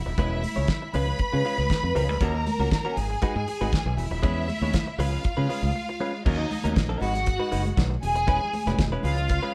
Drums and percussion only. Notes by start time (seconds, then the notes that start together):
0.18 kick, closed hi-hat, muted conga, low conga
0.42 open hi-hat, muted conga, high conga
0.56 high conga
0.68 kick, snare, closed hi-hat
0.93 open hi-hat, muted conga, low conga
1.19 kick, closed hi-hat, muted conga
1.45 open hi-hat, muted conga
1.58 high conga
1.70 kick, snare, closed hi-hat
1.96 open hi-hat, low conga
2.21 kick, closed hi-hat, muted conga, low conga
2.47 open hi-hat, muted conga, high conga
2.60 high conga
2.71 kick, snare, closed hi-hat, muted conga
2.97 open hi-hat, muted conga, low conga
3.22 kick, closed hi-hat
3.48 open hi-hat, muted conga
3.61 high conga
3.73 kick, snare, closed hi-hat, muted conga
3.98 open hi-hat, low conga
4.23 kick, closed hi-hat, muted conga, low conga
4.49 open hi-hat, high conga
4.62 high conga
4.74 kick, snare, closed hi-hat, muted conga
4.99 open hi-hat, muted conga, low conga
5.24 kick, closed hi-hat
5.50 open hi-hat, muted conga
5.63 high conga
6.26 kick, crash, muted conga, low conga
6.51 open hi-hat, high conga
6.64 closed hi-hat, high conga
6.76 kick, snare, closed hi-hat, muted conga
7.01 open hi-hat, muted conga, low conga
7.15 closed hi-hat
7.26 kick, closed hi-hat, muted conga
7.52 open hi-hat, muted conga
7.65 closed hi-hat, high conga
7.77 kick, snare, closed hi-hat
8.03 open hi-hat, muted conga, low conga
8.16 closed hi-hat
8.28 kick, closed hi-hat, low conga
8.53 open hi-hat, high conga
8.66 snare, closed hi-hat, high conga
8.78 kick, snare, closed hi-hat, muted conga
9.03 open hi-hat, low conga
9.18 closed hi-hat
9.28 kick, closed hi-hat, muted conga